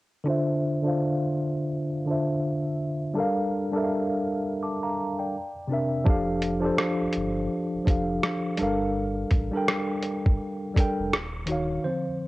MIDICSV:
0, 0, Header, 1, 4, 480
1, 0, Start_track
1, 0, Tempo, 722892
1, 188, Time_signature, 4, 2, 24, 8
1, 8153, End_track
2, 0, Start_track
2, 0, Title_t, "Tine electric piano"
2, 0, Program_c, 0, 4
2, 160, Note_on_c, 0, 50, 99
2, 171, Note_on_c, 0, 62, 83
2, 180, Note_on_c, 0, 65, 83
2, 189, Note_on_c, 0, 72, 99
2, 199, Note_on_c, 0, 76, 99
2, 320, Control_c, 0, 64, 127
2, 511, Note_off_c, 0, 50, 0
2, 517, Note_off_c, 0, 62, 0
2, 522, Note_off_c, 0, 65, 0
2, 526, Note_off_c, 0, 72, 0
2, 531, Note_off_c, 0, 76, 0
2, 545, Note_on_c, 0, 50, 83
2, 558, Note_on_c, 0, 62, 72
2, 566, Note_on_c, 0, 65, 74
2, 575, Note_on_c, 0, 72, 82
2, 584, Note_on_c, 0, 77, 103
2, 1306, Note_off_c, 0, 50, 0
2, 1313, Note_off_c, 0, 62, 0
2, 1317, Note_off_c, 0, 65, 0
2, 1321, Note_off_c, 0, 72, 0
2, 1326, Note_off_c, 0, 77, 0
2, 1365, Note_on_c, 0, 50, 76
2, 1375, Note_on_c, 0, 62, 70
2, 1384, Note_on_c, 0, 65, 60
2, 1395, Note_on_c, 0, 72, 67
2, 1403, Note_on_c, 0, 76, 79
2, 2036, Note_off_c, 0, 50, 0
2, 2041, Note_off_c, 0, 62, 0
2, 2046, Note_off_c, 0, 65, 0
2, 2051, Note_off_c, 0, 72, 0
2, 2055, Note_off_c, 0, 76, 0
2, 2083, Note_on_c, 0, 55, 88
2, 2093, Note_on_c, 0, 62, 90
2, 2102, Note_on_c, 0, 69, 85
2, 2113, Note_on_c, 0, 70, 96
2, 2117, Control_c, 0, 64, 0
2, 2123, Note_on_c, 0, 77, 117
2, 2215, Control_c, 0, 64, 127
2, 2433, Note_off_c, 0, 55, 0
2, 2438, Note_off_c, 0, 62, 0
2, 2443, Note_off_c, 0, 69, 0
2, 2448, Note_off_c, 0, 70, 0
2, 2453, Note_off_c, 0, 77, 0
2, 2468, Note_on_c, 0, 55, 76
2, 2476, Note_on_c, 0, 62, 84
2, 2488, Note_on_c, 0, 69, 79
2, 2496, Note_on_c, 0, 70, 80
2, 2506, Note_on_c, 0, 76, 70
2, 2533, Note_off_c, 0, 76, 0
2, 2550, Note_on_c, 0, 77, 94
2, 3072, Note_on_c, 0, 86, 58
2, 3077, Note_on_c, 0, 81, 45
2, 3099, Note_off_c, 0, 77, 0
2, 3203, Note_off_c, 0, 86, 0
2, 3205, Note_off_c, 0, 81, 0
2, 3208, Note_on_c, 0, 82, 72
2, 3213, Note_on_c, 0, 77, 55
2, 3228, Note_off_c, 0, 55, 0
2, 3232, Note_off_c, 0, 62, 0
2, 3238, Note_off_c, 0, 69, 0
2, 3242, Note_off_c, 0, 70, 0
2, 3436, Note_off_c, 0, 82, 0
2, 3438, Note_off_c, 0, 77, 0
2, 3447, Note_on_c, 0, 79, 57
2, 3448, Note_on_c, 0, 74, 42
2, 3557, Control_c, 0, 64, 0
2, 3667, Control_c, 0, 64, 127
2, 3675, Note_off_c, 0, 79, 0
2, 3676, Note_off_c, 0, 74, 0
2, 3768, Note_on_c, 0, 48, 78
2, 3780, Note_on_c, 0, 60, 66
2, 3790, Note_on_c, 0, 62, 67
2, 3799, Note_on_c, 0, 70, 69
2, 3808, Note_on_c, 0, 76, 89
2, 3998, Note_off_c, 0, 48, 0
2, 4004, Note_off_c, 0, 60, 0
2, 4009, Note_off_c, 0, 62, 0
2, 4013, Note_off_c, 0, 70, 0
2, 4013, Note_on_c, 0, 53, 96
2, 4018, Note_off_c, 0, 76, 0
2, 4020, Note_on_c, 0, 62, 97
2, 4029, Note_on_c, 0, 67, 93
2, 4036, Control_c, 0, 64, 0
2, 4040, Note_on_c, 0, 69, 88
2, 4051, Note_on_c, 0, 77, 114
2, 4163, Control_c, 0, 64, 127
2, 4358, Note_off_c, 0, 53, 0
2, 4362, Note_off_c, 0, 62, 0
2, 4366, Note_off_c, 0, 67, 0
2, 4372, Note_off_c, 0, 69, 0
2, 4377, Note_off_c, 0, 77, 0
2, 4385, Note_on_c, 0, 53, 81
2, 4393, Note_on_c, 0, 62, 80
2, 4405, Note_on_c, 0, 67, 70
2, 4414, Note_on_c, 0, 69, 83
2, 4422, Note_on_c, 0, 72, 89
2, 5146, Note_off_c, 0, 53, 0
2, 5150, Note_off_c, 0, 62, 0
2, 5156, Note_off_c, 0, 67, 0
2, 5161, Note_off_c, 0, 69, 0
2, 5165, Note_off_c, 0, 72, 0
2, 5210, Note_on_c, 0, 53, 73
2, 5219, Note_on_c, 0, 62, 64
2, 5229, Note_on_c, 0, 67, 65
2, 5237, Note_on_c, 0, 69, 66
2, 5247, Note_on_c, 0, 77, 76
2, 5693, Note_on_c, 0, 55, 88
2, 5696, Note_off_c, 0, 62, 0
2, 5699, Note_off_c, 0, 53, 0
2, 5704, Note_on_c, 0, 62, 74
2, 5706, Note_off_c, 0, 69, 0
2, 5709, Note_off_c, 0, 67, 0
2, 5714, Note_on_c, 0, 69, 80
2, 5716, Control_c, 0, 64, 0
2, 5717, Note_off_c, 0, 77, 0
2, 5722, Note_on_c, 0, 70, 77
2, 5731, Note_on_c, 0, 77, 91
2, 5835, Control_c, 0, 64, 127
2, 6250, Note_off_c, 0, 55, 0
2, 6256, Note_off_c, 0, 62, 0
2, 6261, Note_off_c, 0, 69, 0
2, 6265, Note_off_c, 0, 70, 0
2, 6269, Note_off_c, 0, 77, 0
2, 6319, Note_on_c, 0, 55, 77
2, 6330, Note_on_c, 0, 62, 72
2, 6340, Note_on_c, 0, 69, 70
2, 6347, Note_on_c, 0, 70, 80
2, 6357, Note_on_c, 0, 79, 86
2, 7073, Note_off_c, 0, 55, 0
2, 7079, Note_off_c, 0, 62, 0
2, 7083, Note_off_c, 0, 69, 0
2, 7087, Note_off_c, 0, 70, 0
2, 7092, Note_off_c, 0, 79, 0
2, 7133, Note_on_c, 0, 55, 75
2, 7144, Note_on_c, 0, 62, 66
2, 7152, Note_on_c, 0, 69, 82
2, 7164, Note_on_c, 0, 70, 73
2, 7173, Note_on_c, 0, 79, 85
2, 7380, Note_off_c, 0, 55, 0
2, 7386, Note_off_c, 0, 62, 0
2, 7390, Note_off_c, 0, 69, 0
2, 7396, Note_off_c, 0, 70, 0
2, 7396, Control_c, 0, 64, 0
2, 7400, Note_off_c, 0, 79, 0
2, 7524, Control_c, 0, 64, 127
2, 7609, Note_on_c, 0, 51, 79
2, 7622, Note_on_c, 0, 63, 68
2, 7629, Note_on_c, 0, 66, 74
2, 7640, Note_on_c, 0, 73, 69
2, 7650, Note_on_c, 0, 77, 83
2, 7838, Note_off_c, 0, 51, 0
2, 7845, Note_off_c, 0, 63, 0
2, 7849, Note_off_c, 0, 66, 0
2, 7854, Note_off_c, 0, 73, 0
2, 7859, Note_off_c, 0, 77, 0
2, 7863, Note_on_c, 0, 72, 84
2, 7864, Note_on_c, 0, 50, 49
2, 7869, Note_on_c, 0, 53, 48
2, 7874, Note_on_c, 0, 60, 64
2, 7877, Control_c, 0, 64, 0
2, 8007, Control_c, 0, 64, 127
2, 8153, Note_off_c, 0, 50, 0
2, 8153, Note_off_c, 0, 53, 0
2, 8153, Note_off_c, 0, 60, 0
2, 8153, Note_off_c, 0, 72, 0
2, 8153, End_track
3, 0, Start_track
3, 0, Title_t, "Sub bass"
3, 0, Program_c, 1, 38
3, 4031, Note_on_c, 1, 29, 94
3, 4460, Note_off_c, 1, 29, 0
3, 4660, Note_on_c, 1, 31, 49
3, 4697, Note_off_c, 1, 31, 0
3, 4757, Note_on_c, 1, 31, 102
3, 4968, Note_off_c, 1, 31, 0
3, 5140, Note_on_c, 1, 29, 47
3, 5177, Note_off_c, 1, 29, 0
3, 5230, Note_on_c, 1, 29, 77
3, 5444, Note_off_c, 1, 29, 0
3, 5717, Note_on_c, 1, 31, 89
3, 6143, Note_off_c, 1, 31, 0
3, 6189, Note_on_c, 1, 33, 82
3, 6314, Note_off_c, 1, 33, 0
3, 6816, Note_on_c, 1, 31, 82
3, 6902, Note_off_c, 1, 31, 0
3, 7298, Note_on_c, 1, 29, 79
3, 7383, Note_off_c, 1, 29, 0
3, 7397, Note_on_c, 1, 27, 90
3, 7823, Note_off_c, 1, 27, 0
3, 8153, End_track
4, 0, Start_track
4, 0, Title_t, "Drums"
4, 4028, Note_on_c, 9, 36, 107
4, 4094, Note_off_c, 9, 36, 0
4, 4263, Note_on_c, 9, 42, 56
4, 4329, Note_off_c, 9, 42, 0
4, 4504, Note_on_c, 9, 37, 103
4, 4571, Note_off_c, 9, 37, 0
4, 4732, Note_on_c, 9, 42, 53
4, 4799, Note_off_c, 9, 42, 0
4, 5226, Note_on_c, 9, 36, 75
4, 5231, Note_on_c, 9, 42, 62
4, 5292, Note_off_c, 9, 36, 0
4, 5297, Note_off_c, 9, 42, 0
4, 5467, Note_on_c, 9, 37, 90
4, 5533, Note_off_c, 9, 37, 0
4, 5693, Note_on_c, 9, 42, 58
4, 5760, Note_off_c, 9, 42, 0
4, 6181, Note_on_c, 9, 42, 59
4, 6185, Note_on_c, 9, 36, 72
4, 6247, Note_off_c, 9, 42, 0
4, 6251, Note_off_c, 9, 36, 0
4, 6430, Note_on_c, 9, 37, 97
4, 6497, Note_off_c, 9, 37, 0
4, 6658, Note_on_c, 9, 42, 61
4, 6724, Note_off_c, 9, 42, 0
4, 6814, Note_on_c, 9, 36, 90
4, 6880, Note_off_c, 9, 36, 0
4, 7148, Note_on_c, 9, 36, 79
4, 7154, Note_on_c, 9, 42, 67
4, 7214, Note_off_c, 9, 36, 0
4, 7220, Note_off_c, 9, 42, 0
4, 7393, Note_on_c, 9, 37, 96
4, 7459, Note_off_c, 9, 37, 0
4, 7615, Note_on_c, 9, 42, 64
4, 7681, Note_off_c, 9, 42, 0
4, 8153, End_track
0, 0, End_of_file